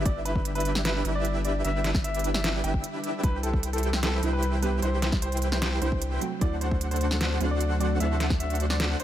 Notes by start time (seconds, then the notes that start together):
Already playing: D3 G3 D4
0.05 G1 D4 E4 G4 B4 D5 E5, kick, closed hi-hat
0.25 B4, closed hi-hat
0.36 kick
0.45 closed hi-hat
0.55 B4, closed hi-hat
0.60 closed hi-hat
0.65 closed hi-hat
0.75 snare
0.85 B4, snare, closed hi-hat
1.05 G1 D4 E4 G4 B4 E5, closed hi-hat
1.15 D5
1.25 closed hi-hat
1.45 D5, closed hi-hat
1.64 G1 D4 E4 G4 B4 E5, closed hi-hat
1.84 snare, closed hi-hat
1.95 kick, snare
2.04 E5, closed hi-hat
2.14 closed hi-hat
2.19 closed hi-hat
2.24 closed hi-hat
2.34 E5, snare
2.44 snare, closed hi-hat
2.64 G1 D4 E4 G4 B4 E5 G5, closed hi-hat
2.74 kick
2.84 closed hi-hat
3.04 closed hi-hat
3.22 C2 C3 G3 D4 E4 G4 B4 C5 G5, kick, closed hi-hat
3.43 A4, closed hi-hat
3.53 kick
3.63 closed hi-hat
3.73 A4, closed hi-hat
3.78 closed hi-hat
3.83 closed hi-hat
3.93 snare
4.03 A4, snare, closed hi-hat
4.22 C2 G3 D4 E4 G4 B4 C5 G5, closed hi-hat
4.33 B4
4.43 closed hi-hat
4.62 G3 B3 D4 G4 B4, closed hi-hat
4.80 C2 G3 D4 E4 G4 B4 C5 G5, closed hi-hat
4.85 E4
5.02 snare, closed hi-hat
5.12 kick, snare
5.22 C5, closed hi-hat
5.32 closed hi-hat
5.37 closed hi-hat
5.42 closed hi-hat
5.52 C5, snare
5.62 snare, closed hi-hat
5.81 C2 G3 D4 E4 G4 B4 C5 G5, closed hi-hat
5.92 kick
6.02 closed hi-hat
6.20 C3 F#3 A3 C4 D4 F#4, closed hi-hat
6.39 D2 F#3 A3 C4 D4 E4 F#4 A4 C5 D5 F#5, kick, closed hi-hat
6.61 C5, closed hi-hat
6.71 kick
6.81 closed hi-hat
6.91 C5, closed hi-hat
6.96 closed hi-hat
7.01 closed hi-hat
7.11 snare
7.21 C5, snare, closed hi-hat
7.40 D2 F#3 A3 C4 D4 E4 F#4 A4 C5 F#5, closed hi-hat
7.51 D5
7.61 closed hi-hat
7.79 F#3 A3 C4 F#4 D5, closed hi-hat
7.98 D2 F#3 A3 C4 D4 E4 F#4 A4 C5 E5 F#5, closed hi-hat
8.20 snare, closed hi-hat
8.30 kick, snare
8.40 E5, closed hi-hat
8.50 closed hi-hat
8.55 closed hi-hat
8.60 closed hi-hat
8.70 D5, snare
8.80 snare, closed hi-hat
9.00 C5, closed hi-hat